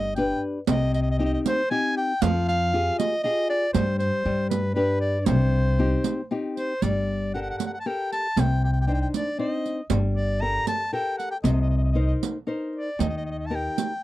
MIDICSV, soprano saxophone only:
0, 0, Header, 1, 2, 480
1, 0, Start_track
1, 0, Key_signature, -3, "minor"
1, 0, Tempo, 513699
1, 629, Time_signature, 3, 2, 24, 8
1, 6370, Key_signature, -2, "minor"
1, 13113, End_track
2, 0, Start_track
2, 0, Title_t, "Soprano saxophone"
2, 0, Program_c, 0, 64
2, 0, Note_on_c, 0, 75, 79
2, 143, Note_off_c, 0, 75, 0
2, 149, Note_on_c, 0, 79, 76
2, 380, Note_off_c, 0, 79, 0
2, 647, Note_on_c, 0, 75, 79
2, 871, Note_off_c, 0, 75, 0
2, 882, Note_on_c, 0, 75, 79
2, 944, Note_off_c, 0, 75, 0
2, 958, Note_on_c, 0, 75, 58
2, 1016, Note_off_c, 0, 75, 0
2, 1038, Note_on_c, 0, 75, 73
2, 1091, Note_off_c, 0, 75, 0
2, 1107, Note_on_c, 0, 75, 68
2, 1163, Note_off_c, 0, 75, 0
2, 1168, Note_on_c, 0, 75, 73
2, 1231, Note_off_c, 0, 75, 0
2, 1246, Note_on_c, 0, 75, 62
2, 1307, Note_off_c, 0, 75, 0
2, 1375, Note_on_c, 0, 72, 89
2, 1584, Note_off_c, 0, 72, 0
2, 1595, Note_on_c, 0, 80, 90
2, 1824, Note_off_c, 0, 80, 0
2, 1843, Note_on_c, 0, 79, 92
2, 2072, Note_on_c, 0, 77, 82
2, 2086, Note_off_c, 0, 79, 0
2, 2319, Note_off_c, 0, 77, 0
2, 2323, Note_on_c, 0, 77, 91
2, 2764, Note_off_c, 0, 77, 0
2, 2792, Note_on_c, 0, 75, 89
2, 3007, Note_off_c, 0, 75, 0
2, 3020, Note_on_c, 0, 75, 97
2, 3250, Note_off_c, 0, 75, 0
2, 3268, Note_on_c, 0, 74, 95
2, 3482, Note_off_c, 0, 74, 0
2, 3491, Note_on_c, 0, 72, 77
2, 3723, Note_off_c, 0, 72, 0
2, 3727, Note_on_c, 0, 72, 86
2, 4177, Note_off_c, 0, 72, 0
2, 4204, Note_on_c, 0, 71, 73
2, 4425, Note_off_c, 0, 71, 0
2, 4437, Note_on_c, 0, 71, 81
2, 4672, Note_off_c, 0, 71, 0
2, 4678, Note_on_c, 0, 74, 76
2, 4861, Note_off_c, 0, 74, 0
2, 4861, Note_on_c, 0, 74, 50
2, 4912, Note_on_c, 0, 72, 73
2, 4926, Note_off_c, 0, 74, 0
2, 5880, Note_off_c, 0, 72, 0
2, 6134, Note_on_c, 0, 72, 72
2, 6379, Note_on_c, 0, 74, 71
2, 6393, Note_off_c, 0, 72, 0
2, 6856, Note_off_c, 0, 74, 0
2, 6861, Note_on_c, 0, 78, 72
2, 6925, Note_off_c, 0, 78, 0
2, 6932, Note_on_c, 0, 78, 61
2, 6997, Note_off_c, 0, 78, 0
2, 7008, Note_on_c, 0, 78, 71
2, 7072, Note_off_c, 0, 78, 0
2, 7083, Note_on_c, 0, 78, 59
2, 7143, Note_off_c, 0, 78, 0
2, 7161, Note_on_c, 0, 78, 65
2, 7216, Note_off_c, 0, 78, 0
2, 7228, Note_on_c, 0, 78, 59
2, 7284, Note_off_c, 0, 78, 0
2, 7290, Note_on_c, 0, 81, 68
2, 7352, Note_on_c, 0, 79, 98
2, 7366, Note_off_c, 0, 81, 0
2, 7588, Note_off_c, 0, 79, 0
2, 7594, Note_on_c, 0, 81, 92
2, 7845, Note_on_c, 0, 79, 86
2, 7859, Note_off_c, 0, 81, 0
2, 8070, Note_off_c, 0, 79, 0
2, 8076, Note_on_c, 0, 79, 76
2, 8132, Note_off_c, 0, 79, 0
2, 8152, Note_on_c, 0, 79, 57
2, 8204, Note_off_c, 0, 79, 0
2, 8232, Note_on_c, 0, 79, 73
2, 8279, Note_off_c, 0, 79, 0
2, 8291, Note_on_c, 0, 79, 73
2, 8345, Note_off_c, 0, 79, 0
2, 8356, Note_on_c, 0, 79, 69
2, 8414, Note_off_c, 0, 79, 0
2, 8422, Note_on_c, 0, 79, 60
2, 8483, Note_off_c, 0, 79, 0
2, 8550, Note_on_c, 0, 74, 77
2, 8759, Note_off_c, 0, 74, 0
2, 8777, Note_on_c, 0, 75, 75
2, 9217, Note_off_c, 0, 75, 0
2, 9486, Note_on_c, 0, 74, 87
2, 9729, Note_on_c, 0, 82, 101
2, 9743, Note_off_c, 0, 74, 0
2, 9975, Note_off_c, 0, 82, 0
2, 9981, Note_on_c, 0, 81, 96
2, 10193, Note_off_c, 0, 81, 0
2, 10216, Note_on_c, 0, 79, 90
2, 10442, Note_off_c, 0, 79, 0
2, 10449, Note_on_c, 0, 78, 80
2, 10559, Note_off_c, 0, 78, 0
2, 10570, Note_on_c, 0, 79, 78
2, 10622, Note_off_c, 0, 79, 0
2, 10689, Note_on_c, 0, 75, 70
2, 10756, Note_off_c, 0, 75, 0
2, 10774, Note_on_c, 0, 75, 43
2, 10836, Note_off_c, 0, 75, 0
2, 10854, Note_on_c, 0, 75, 58
2, 10913, Note_off_c, 0, 75, 0
2, 10932, Note_on_c, 0, 75, 42
2, 10986, Note_off_c, 0, 75, 0
2, 11000, Note_on_c, 0, 75, 46
2, 11054, Note_off_c, 0, 75, 0
2, 11062, Note_on_c, 0, 75, 36
2, 11119, Note_off_c, 0, 75, 0
2, 11136, Note_on_c, 0, 75, 50
2, 11192, Note_off_c, 0, 75, 0
2, 11205, Note_on_c, 0, 75, 45
2, 11265, Note_off_c, 0, 75, 0
2, 11271, Note_on_c, 0, 75, 52
2, 11334, Note_off_c, 0, 75, 0
2, 11922, Note_on_c, 0, 74, 65
2, 12131, Note_off_c, 0, 74, 0
2, 12159, Note_on_c, 0, 75, 67
2, 12218, Note_off_c, 0, 75, 0
2, 12234, Note_on_c, 0, 75, 50
2, 12293, Note_off_c, 0, 75, 0
2, 12308, Note_on_c, 0, 75, 62
2, 12366, Note_off_c, 0, 75, 0
2, 12390, Note_on_c, 0, 75, 55
2, 12432, Note_off_c, 0, 75, 0
2, 12438, Note_on_c, 0, 75, 61
2, 12498, Note_off_c, 0, 75, 0
2, 12515, Note_on_c, 0, 75, 47
2, 12580, Note_on_c, 0, 81, 67
2, 12594, Note_off_c, 0, 75, 0
2, 12664, Note_on_c, 0, 79, 90
2, 12678, Note_off_c, 0, 81, 0
2, 13113, Note_off_c, 0, 79, 0
2, 13113, End_track
0, 0, End_of_file